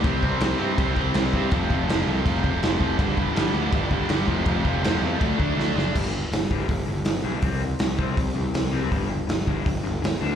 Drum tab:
CC |x-x-x-x-|x-x-x-x-|x-x-x-x-|x-x-x---|
HH |--------|--------|--------|--------|
SD |--o---o-|--o---o-|--o---o-|--o---oo|
BD |oo--oo-o|oo--oo-o|oo--oo-o|oo--oo--|

CC |x-------|--------|--------|
HH |--o-o-o-|o-o-o-o-|o-o-o-o-|
SD |--o---o-|--o---o-|--o---o-|
BD |o--oo---|o--oo---|o--oo---|